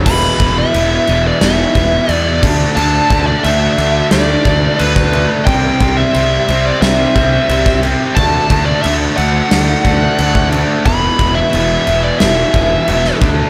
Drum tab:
CC |x-x-x-x-x-x-x-x-|x-x-x-x-x-x-x-x-|x-x-x-x-x-x-x-x-|x-x-x-x-x-x-x-x-|
SD |--------o-------|--------o----o--|--------o----o--|--------o-------|
BD |o-o-------o---o-|--o-------o--o--|o-o-------o--o--|o-o-------o--o--|

CC |x-x-x-x-x-x-x-x-|
SD |--------o----o--|
BD |o-o-------o---o-|